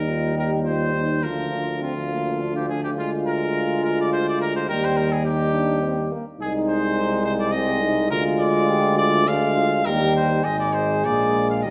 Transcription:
Already playing: tuba D#2, euphonium G3, flugelhorn D#4, trumpet A#4
0.09 french horn F4
0.36 french horn G4, trumpet A#4
0.64 french horn F4, trumpet C5
0.93 french horn D#4
1.23 tuba D2, euphonium F3, french horn F4, flugelhorn F4, trumpet A#4
1.52 french horn D4
1.82 euphonium F3, french horn C4, trumpet F4, flugelhorn F4
2.11 french horn A#3
2.40 french horn D4
2.56 trumpet G4
2.69 trumpet G#4
2.84 trumpet G4
2.97 euphonium G#3, french horn F4, trumpet F4, flugelhorn F4
3.27 trumpet A#4
3.84 trumpet A#4
4.01 trumpet D5
4.13 trumpet C5
4.28 trumpet D5
4.41 trumpet A#4
4.56 trumpet C5
4.69 tuba D#2, euphonium G3, flugelhorn D#4, french horn G4, trumpet A#4
4.85 trumpet C5
4.97 trumpet A#4
5.12 trumpet G#4
5.25 euphonium G3, french horn D#4, flugelhorn D#4, trumpet G4
5.54 french horn D4
5.83 french horn C4
6.11 french horn A#3
6.40 tuba C2, euphonium G#3, french horn D#4, flugelhorn D#4, trumpet G#4
6.69 trumpet C5
7.26 trumpet C5
7.40 trumpet D5
7.52 euphonium G#3, french horn C4, flugelhorn D#4, trumpet D#5
7.82 french horn D#4
8.10 tuba D2, euphonium G#3, flugelhorn F4, french horn F4, trumpet A#4
8.39 trumpet D5
8.70 french horn G4
8.98 french horn F4, trumpet D5
9.27 euphonium G#3, french horn D4, flugelhorn F4, trumpet F5
9.57 french horn F4
9.86 tuba D#2, euphonium G3, flugelhorn D#4, french horn G4, trumpet A#4
10.16 trumpet C5
10.43 tuba G#1, euphonium G#3, flugelhorn D#4, french horn G#4, trumpet D#5
10.60 trumpet D5
10.73 trumpet C5
11.04 tuba A#1, euphonium G#3, flugelhorn A#3, trumpet D5
11.49 trumpet F5
11.63 tuba D#2, euphonium G3, flugelhorn A#3, french horn G4, trumpet D#5

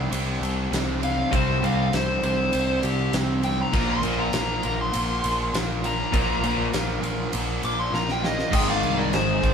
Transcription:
Already playing: tonewheel organ C4 G4 D5
0.10 picked electric bass C2, overdriven electric guitar C3 G3 C4, ride
0.41 picked electric bass C2, ride
0.71 picked electric bass C2, overdriven electric guitar C3 G3 C4, snare, ride
1.00 overdriven electric guitar C3 G3 C4, lead electric guitar F5, ride
1.30 picked electric bass C2, overdriven electric guitar C3 G3 C4, tonewheel organ C5, kick, ride
1.35 lead electric guitar C5
1.62 picked electric bass C2, overdriven electric guitar C3 G3 C4, lead electric guitar F5, ride
1.92 picked electric bass C2, overdriven electric guitar C3 G3 C4, lead electric guitar C5, snare, ride
2.23 picked electric bass C2, overdriven electric guitar C3 G3 C4, lead electric guitar C5, ride
2.52 picked electric bass C2, overdriven electric guitar C3 G3 C4, ride
2.83 picked electric bass C2, lead electric guitar G4, ride
3.13 picked electric bass C2, overdriven electric guitar C3 G3 C4, snare, ride
3.43 overdriven electric guitar C3 G3 C4, lead electric guitar G5, ride
3.61 lead electric guitar A#5
3.73 picked electric bass A#1, overdriven electric guitar A#2 F3 A#3, tonewheel organ A#3 F4, kick, crash
3.90 lead electric guitar C6
4.02 picked electric bass A#1, overdriven electric guitar A#2 F3 A#3, ride
4.20 lead electric guitar A#5
4.33 picked electric bass A#1, overdriven electric guitar A#2 F3 A#3, snare, ride
4.63 picked electric bass A#1, overdriven electric guitar A#2 F3 A#3, ride
4.81 lead electric guitar C6
4.92 picked electric bass A#1, overdriven electric guitar A#2 F3 A#3, ride
5.24 picked electric bass A#1, ride
5.53 picked electric bass A#1, overdriven electric guitar A#2 F3 A#3, snare, ride
5.82 overdriven electric guitar A#2 F3 A#3, lead electric guitar A#5, ride
6.12 picked electric bass A#1, overdriven electric guitar A#2 F3 A#3, kick, ride
6.42 picked electric bass A#1, overdriven electric guitar A#2 F3 A#3, ride
6.72 picked electric bass A#1, overdriven electric guitar A#2 F3 A#3, snare, ride
7.01 picked electric bass A#1, overdriven electric guitar A#2 F3 A#3, ride
7.32 picked electric bass A#1, overdriven electric guitar A#2 F3 A#3, ride
7.63 picked electric bass A#1, lead electric guitar D6, ride
7.79 lead electric guitar C6
7.92 picked electric bass A#1, overdriven electric guitar A#2 F3 A#3, lead electric guitar A#5, snare
8.09 lead electric guitar G5, snare
8.22 overdriven electric guitar A#2 F3 A#3, lead electric guitar D#5, snare
8.39 snare
8.51 picked electric bass G#1, overdriven electric guitar G#2 D#3, tonewheel organ G#3 D#4 A#4, lead electric guitar D#5, kick, crash
8.55 overdriven electric guitar G#3, lead electric guitar G5
8.67 lead electric guitar D5 F5
8.83 picked electric bass C2, crash
8.98 lead electric guitar A#4 D5
9.13 picked electric bass G#1, lead electric guitar G#4 C5, snare, crash
9.41 overdriven electric guitar G#2 D#3 G#3, kick, crash

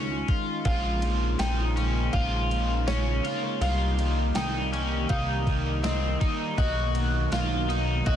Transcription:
Already playing: analog synth bass C#2, analog synth pad D#3 G#3 C#4 D#4 F4, clean electric guitar C#4, felt piano G#5
0.28 clean electric guitar F4, kick, ride
0.65 analog synth bass A#1, overdriven electric guitar A#2 F3 G#3 C#4 F4 C5, analog synth pad C#3 A#3, felt piano F5, kick, ride
1.02 overdriven electric guitar G#3 C#4 F4 C5, ride
1.39 analog synth bass A#1, overdriven electric guitar G#3 C#4 F4 C5, clean electric guitar D#4, felt piano G5, snare, ride, tambourine
1.76 overdriven electric guitar G#3 C#4 F4 C5, ride
2.13 analog synth bass A#1, overdriven electric guitar A#2 F3 G#3 C#4 F4 C5, felt piano F5, kick, ride
2.51 overdriven electric guitar G#3 C#4 F4 C5, ride
2.87 overdriven electric guitar G#3 C#4 F4, felt piano C#5, snare, ride, tambourine
3.25 overdriven electric guitar G#3 C#4 F4, ride
3.61 analog synth bass C2, overdriven electric guitar C3 G3 A#3 D#4, analog synth pad D#3 G3 A#3 G4, clean electric guitar F4, felt piano F5, ride
3.98 overdriven electric guitar G3 A#3 D#4, ride
4.35 analog synth bass C2, overdriven electric guitar C3 G3 A#3, felt piano G5, snare, ride, tambourine
4.39 overdriven electric guitar D#4
4.72 overdriven electric guitar G3 A#3 D#4, clean electric guitar C#4, ride
5.09 analog synth bass C2, overdriven electric guitar C3 G3 A#3 D#4, felt piano F5, kick, ride
5.46 overdriven electric guitar G3 A#3 D#4, kick, ride
5.82 overdriven electric guitar C3 G3 A#3 D#4, clean electric guitar C4, felt piano D#5, snare, ride, tambourine
6.20 overdriven electric guitar G3 A#3 D#4, kick, ride
6.57 analog synth bass B1, overdriven electric guitar B2 F#3 A#3 D#4, analog synth pad B2 D#3 F#3 D#4, clean electric guitar F#4, felt piano D#5, kick, ride
6.94 overdriven electric guitar F#3 A#3 D#4, ride
7.31 analog synth bass B1, overdriven electric guitar B2 F#3 A#3 D#4, clean electric guitar F4, felt piano F5, snare, ride, tambourine
7.68 overdriven electric guitar F#3 A#3 D#4, ride
8.05 analog synth bass B1, overdriven electric guitar B2 F#3 A#3 D#4, clean electric guitar F#4, felt piano D#5, kick, ride

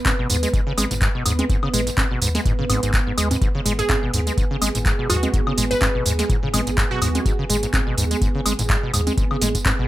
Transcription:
Already playing: analog synth pad B3 B4
0.06 acid bass G#2, kick, clap, closed hi-hat, tambourine, high conga
0.19 sub bass G#1, acid bass B2
0.30 sub bass D#2, acid bass G#2, open hi-hat, tambourine
0.43 acid bass G#3, closed hi-hat, tambourine
0.54 acid bass G#2, kick, closed hi-hat, tambourine
0.67 acid bass C#3
0.77 sub bass G#1, acid bass G#3, open hi-hat, tambourine, high conga, high woodblock
0.91 sub bass G#1, acid bass G#2, closed hi-hat, mid tom, tambourine
1.02 acid bass G#2, kick, clap, closed hi-hat, tambourine
1.15 acid bass B2
1.26 sub bass D#2, acid bass G#2, open hi-hat, tambourine, high woodblock
1.39 acid bass G#3, closed hi-hat, tambourine, high conga
1.50 acid bass G#2, kick, closed hi-hat, tambourine
1.63 acid bass C#3, high woodblock
1.73 sub bass G#1, acid bass G#3, mid tom, open hi-hat, tambourine
1.87 acid bass G#2, closed hi-hat, tambourine
1.98 acid bass G#2, kick, clap, closed hi-hat, tambourine, high conga
2.11 sub bass G#1, acid bass B2
2.22 sub bass D#2, acid bass G#2, open hi-hat, tambourine
2.35 acid bass G#3, snare, closed hi-hat, tambourine
2.46 acid bass G#2, kick, closed hi-hat, mid tom, tambourine
2.59 acid bass C#3, mid tom
2.69 sub bass G#1, acid bass G#2, mid tom, open hi-hat, tambourine, high conga, high woodblock
2.83 sub bass G#1, acid bass G#2, closed hi-hat, tambourine
2.94 acid bass G#2, kick, clap, closed hi-hat, tambourine
3.07 acid bass G#2
3.18 sub bass D#2, acid bass G#3, open hi-hat, tambourine, high woodblock
3.31 acid bass G#2, closed hi-hat, tambourine, high conga
3.41 acid bass G#2, analog synth pad G#4, kick, closed hi-hat, tambourine
3.55 acid bass C#3
3.66 sub bass G#1, acid bass G#3, mid tom, open hi-hat, tambourine
3.79 acid bass G#2, synth pluck G#4, closed hi-hat, tambourine
3.90 acid bass G#2, synth pluck G#4, kick, clap, closed hi-hat, tambourine, high conga
4.03 sub bass G#1, acid bass B2
4.14 sub bass D#2, acid bass G#2, open hi-hat, tambourine
4.27 acid bass G#3, closed hi-hat, tambourine
4.38 acid bass G#2, kick, closed hi-hat, tambourine
4.51 acid bass C#3
4.62 sub bass G#1, acid bass G#3, open hi-hat, tambourine, high conga, high woodblock
4.75 sub bass G#1, acid bass G#2, closed hi-hat, mid tom, tambourine
4.86 acid bass G#2, kick, clap, closed hi-hat, tambourine
4.99 acid bass B2
5.10 sub bass D#2, acid bass G#2, synth pluck F#4, open hi-hat, tambourine, high woodblock
5.23 acid bass G#3, closed hi-hat, tambourine, high conga
5.34 acid bass G#2, kick, closed hi-hat, tambourine
5.47 acid bass C#3, high woodblock
5.58 sub bass G#1, acid bass G#3, mid tom, open hi-hat, tambourine
5.71 acid bass G#2, synth pluck B4, closed hi-hat, tambourine
5.82 acid bass G#2, kick, clap, closed hi-hat, tambourine, high conga
5.95 sub bass G#1, acid bass B2
6.06 sub bass D#2, acid bass G#2, open hi-hat, tambourine
6.19 acid bass G#3, snare, closed hi-hat, tambourine
6.30 acid bass G#2, kick, closed hi-hat, mid tom, tambourine
6.43 acid bass C#3, mid tom
6.54 sub bass G#1, acid bass G#3, mid tom, open hi-hat, tambourine, high conga, high woodblock
6.67 sub bass G#1, acid bass G#2, closed hi-hat, tambourine
6.78 acid bass G#2, kick, clap, closed hi-hat, tambourine
6.91 acid bass B2, synth pluck F#4
7.02 sub bass D#2, acid bass G#2, open hi-hat, tambourine, high woodblock
7.15 acid bass G#3, closed hi-hat, tambourine, high conga
7.25 acid bass G#2, kick, closed hi-hat, tambourine
7.39 acid bass C#3
7.50 sub bass G#1, acid bass G#3, mid tom, open hi-hat, tambourine
7.63 acid bass G#2, closed hi-hat, tambourine
7.74 acid bass G#2, kick, clap, closed hi-hat, tambourine, high conga
7.87 sub bass G#1, acid bass B2
7.97 sub bass D#2, acid bass G#2, open hi-hat, tambourine
8.11 acid bass G#3, closed hi-hat, tambourine
8.22 acid bass G#2, kick, closed hi-hat, tambourine
8.35 acid bass C#3
8.46 sub bass G#1, acid bass G#3, open hi-hat, tambourine, high conga, high woodblock
8.59 sub bass G#1, acid bass G#2, closed hi-hat, mid tom, tambourine
8.70 acid bass G#2, kick, clap, closed hi-hat, tambourine
8.83 acid bass B2
8.94 sub bass D#2, acid bass G#2, open hi-hat, tambourine, high woodblock
9.07 acid bass G#3, closed hi-hat, tambourine, high conga
9.18 acid bass G#2, kick, closed hi-hat, tambourine
9.31 acid bass C#3, high woodblock
9.42 sub bass G#1, acid bass G#3, snare, mid tom, open hi-hat, tambourine
9.55 acid bass G#2, kick, closed hi-hat, tambourine
9.65 acid bass G#2, kick, clap, closed hi-hat, tambourine, high conga
9.79 sub bass G#1, acid bass B2

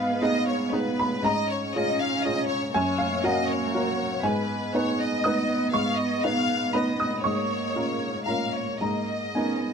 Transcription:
Already playing: upright piano G#2 F5, cello B3, violin section B4
0.21 upright piano B3 D#4 G#4 D#5, violin section D#5
0.48 violin section C#5
0.72 upright piano B3 D#4 G#4, violin section B4
0.99 upright piano B5
1.23 upright piano G#2 A#5, cello C#4, violin section D#5
1.49 violin section C#5
1.74 upright piano C#4 F4 G#4, violin section D#5
2.00 violin section F5
2.24 upright piano C#4 F4 G#4, violin section D#5
2.47 violin section C#5
2.72 upright piano F#2 G#5, cello A#3, violin section C#5
2.98 upright piano F5
3.23 upright piano C#4 F#4 A#4 F#5, violin section D#5
3.49 violin section C#5
3.74 upright piano C#4 F#4 A#4
4.23 upright piano G#2 G#5, cello B3, violin section B4
4.74 upright piano B3 D#4 B4, violin section C#5
4.99 violin section D#5
5.24 upright piano B3 D#4 B4 D#6
5.71 upright piano G#2 C#6, violin section F5
5.96 violin section D#5
6.23 upright piano B3 D#4 B4, violin section F5
6.73 upright piano B3 D#4 B4 B5, violin section D#5
7.00 upright piano D#6
7.23 upright piano G#2 C#6, cello A#3, violin section C#5
7.76 upright piano C#4 F4 A#4
8.26 cello A#3, upright piano C#4 F4 A#4 A#5, violin section F5
8.53 violin section C#5
8.80 upright piano G#2 A#5, cello A#3, violin section D#5
9.35 upright piano B3 D#4 A#4 G#5, cello C#4
9.61 cello B3

